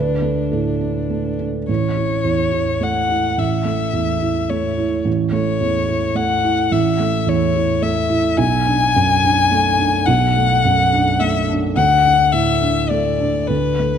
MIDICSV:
0, 0, Header, 1, 3, 480
1, 0, Start_track
1, 0, Key_signature, 3, "major"
1, 0, Tempo, 581959
1, 1391, Time_signature, 3, 2, 24, 8
1, 1391, Tempo, 565504
1, 3311, Tempo, 558659
1, 10031, Tempo, 579151
1, 11865, End_track
2, 0, Start_track
2, 0, Title_t, "Violin"
2, 0, Program_c, 0, 40
2, 0, Note_on_c, 0, 62, 57
2, 1191, Note_off_c, 0, 62, 0
2, 1395, Note_on_c, 0, 73, 65
2, 2363, Note_on_c, 0, 78, 66
2, 2376, Note_off_c, 0, 73, 0
2, 2835, Note_on_c, 0, 76, 61
2, 2848, Note_off_c, 0, 78, 0
2, 3780, Note_on_c, 0, 73, 59
2, 3793, Note_off_c, 0, 76, 0
2, 4262, Note_off_c, 0, 73, 0
2, 4493, Note_on_c, 0, 73, 68
2, 5215, Note_on_c, 0, 78, 76
2, 5228, Note_off_c, 0, 73, 0
2, 5695, Note_on_c, 0, 76, 69
2, 5708, Note_off_c, 0, 78, 0
2, 6174, Note_on_c, 0, 73, 77
2, 6187, Note_off_c, 0, 76, 0
2, 6641, Note_on_c, 0, 76, 76
2, 6654, Note_off_c, 0, 73, 0
2, 7120, Note_off_c, 0, 76, 0
2, 7125, Note_on_c, 0, 80, 112
2, 8559, Note_on_c, 0, 78, 89
2, 8572, Note_off_c, 0, 80, 0
2, 9541, Note_on_c, 0, 76, 79
2, 9554, Note_off_c, 0, 78, 0
2, 9784, Note_off_c, 0, 76, 0
2, 10022, Note_on_c, 0, 78, 99
2, 10486, Note_on_c, 0, 76, 84
2, 10498, Note_off_c, 0, 78, 0
2, 10969, Note_on_c, 0, 74, 70
2, 10981, Note_off_c, 0, 76, 0
2, 11442, Note_on_c, 0, 71, 72
2, 11455, Note_off_c, 0, 74, 0
2, 11865, Note_off_c, 0, 71, 0
2, 11865, End_track
3, 0, Start_track
3, 0, Title_t, "Felt piano"
3, 0, Program_c, 1, 0
3, 0, Note_on_c, 1, 38, 42
3, 0, Note_on_c, 1, 62, 37
3, 0, Note_on_c, 1, 71, 59
3, 94, Note_off_c, 1, 62, 0
3, 103, Control_c, 1, 64, 127
3, 179, Note_on_c, 1, 57, 35
3, 393, Note_off_c, 1, 71, 0
3, 425, Note_on_c, 1, 69, 37
3, 436, Note_on_c, 1, 45, 34
3, 569, Note_off_c, 1, 57, 0
3, 668, Note_on_c, 1, 62, 33
3, 819, Note_off_c, 1, 45, 0
3, 907, Note_on_c, 1, 57, 29
3, 1055, Note_off_c, 1, 62, 0
3, 1117, Note_off_c, 1, 69, 0
3, 1154, Note_on_c, 1, 62, 30
3, 1294, Note_off_c, 1, 57, 0
3, 1354, Note_off_c, 1, 38, 0
3, 1390, Note_on_c, 1, 33, 45
3, 1391, Note_off_c, 1, 62, 0
3, 1405, Control_c, 1, 64, 0
3, 1538, Control_c, 1, 64, 127
3, 1629, Note_on_c, 1, 64, 34
3, 1864, Note_on_c, 1, 40, 36
3, 2015, Note_off_c, 1, 64, 0
3, 2099, Note_on_c, 1, 64, 38
3, 2250, Note_off_c, 1, 40, 0
3, 2341, Note_on_c, 1, 57, 33
3, 2488, Note_off_c, 1, 64, 0
3, 2587, Note_on_c, 1, 64, 34
3, 2730, Note_off_c, 1, 57, 0
3, 2797, Note_off_c, 1, 33, 0
3, 2823, Note_on_c, 1, 33, 42
3, 2848, Control_c, 1, 64, 0
3, 2974, Note_off_c, 1, 64, 0
3, 3008, Control_c, 1, 64, 127
3, 3056, Note_on_c, 1, 57, 36
3, 3298, Note_on_c, 1, 40, 33
3, 3449, Note_off_c, 1, 57, 0
3, 3545, Note_on_c, 1, 64, 38
3, 3690, Note_off_c, 1, 40, 0
3, 3785, Note_on_c, 1, 57, 37
3, 3932, Note_off_c, 1, 64, 0
3, 4021, Note_on_c, 1, 64, 39
3, 4169, Note_off_c, 1, 57, 0
3, 4230, Note_off_c, 1, 33, 0
3, 4256, Note_on_c, 1, 33, 52
3, 4283, Control_c, 1, 64, 0
3, 4407, Note_off_c, 1, 64, 0
3, 4444, Control_c, 1, 64, 127
3, 4492, Note_on_c, 1, 57, 41
3, 4737, Note_on_c, 1, 40, 38
3, 4883, Note_off_c, 1, 57, 0
3, 4969, Note_on_c, 1, 64, 43
3, 5124, Note_off_c, 1, 40, 0
3, 5203, Note_on_c, 1, 57, 41
3, 5359, Note_off_c, 1, 64, 0
3, 5454, Note_on_c, 1, 64, 43
3, 5595, Note_off_c, 1, 57, 0
3, 5660, Note_off_c, 1, 33, 0
3, 5687, Note_on_c, 1, 33, 56
3, 5716, Control_c, 1, 64, 0
3, 5840, Note_off_c, 1, 64, 0
3, 5879, Control_c, 1, 64, 127
3, 5929, Note_on_c, 1, 57, 46
3, 6161, Note_on_c, 1, 40, 45
3, 6316, Note_off_c, 1, 57, 0
3, 6404, Note_on_c, 1, 64, 46
3, 6550, Note_off_c, 1, 40, 0
3, 6639, Note_on_c, 1, 57, 48
3, 6792, Note_off_c, 1, 64, 0
3, 6878, Note_on_c, 1, 64, 49
3, 7032, Note_off_c, 1, 57, 0
3, 7096, Note_off_c, 1, 33, 0
3, 7120, Note_on_c, 1, 35, 59
3, 7128, Note_off_c, 1, 64, 0
3, 7153, Control_c, 1, 64, 0
3, 7281, Control_c, 1, 64, 127
3, 7366, Note_on_c, 1, 62, 49
3, 7617, Note_on_c, 1, 42, 52
3, 7756, Note_off_c, 1, 62, 0
3, 7859, Note_on_c, 1, 62, 54
3, 8001, Note_off_c, 1, 42, 0
3, 8092, Note_on_c, 1, 57, 53
3, 8243, Note_off_c, 1, 62, 0
3, 8334, Note_on_c, 1, 62, 57
3, 8481, Note_off_c, 1, 57, 0
3, 8538, Note_off_c, 1, 35, 0
3, 8574, Note_on_c, 1, 35, 66
3, 8598, Control_c, 1, 64, 0
3, 8712, Control_c, 1, 64, 127
3, 8724, Note_off_c, 1, 62, 0
3, 8825, Note_on_c, 1, 57, 52
3, 9067, Note_on_c, 1, 42, 51
3, 9211, Note_off_c, 1, 57, 0
3, 9307, Note_on_c, 1, 62, 53
3, 9452, Note_off_c, 1, 42, 0
3, 9547, Note_on_c, 1, 57, 49
3, 9691, Note_off_c, 1, 62, 0
3, 9790, Note_on_c, 1, 62, 53
3, 9932, Note_off_c, 1, 57, 0
3, 9992, Note_off_c, 1, 35, 0
3, 10030, Note_on_c, 1, 38, 61
3, 10031, Note_off_c, 1, 62, 0
3, 10047, Control_c, 1, 64, 0
3, 10174, Control_c, 1, 64, 127
3, 10260, Note_on_c, 1, 62, 49
3, 10497, Note_on_c, 1, 45, 45
3, 10641, Note_off_c, 1, 62, 0
3, 10731, Note_on_c, 1, 62, 43
3, 10879, Note_off_c, 1, 45, 0
3, 10973, Note_on_c, 1, 57, 43
3, 11117, Note_off_c, 1, 62, 0
3, 11218, Note_on_c, 1, 62, 40
3, 11361, Note_off_c, 1, 57, 0
3, 11428, Note_off_c, 1, 38, 0
3, 11464, Note_on_c, 1, 38, 50
3, 11477, Control_c, 1, 64, 0
3, 11608, Note_off_c, 1, 62, 0
3, 11638, Control_c, 1, 64, 127
3, 11707, Note_on_c, 1, 57, 37
3, 11865, Note_off_c, 1, 38, 0
3, 11865, Note_off_c, 1, 57, 0
3, 11865, End_track
0, 0, End_of_file